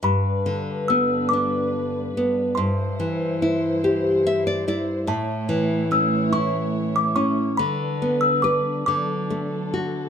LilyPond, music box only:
\new Staff \with { instrumentName = "Music box" } { \time 6/8 \key g \major \tempo 4. = 48 b''4 e'''8 d'''4. | c'''2 r4 | a''4 e'''8 cis'''8. d'''16 cis'''8 | b''8. e'''16 d'''8 d'''4 r8 | }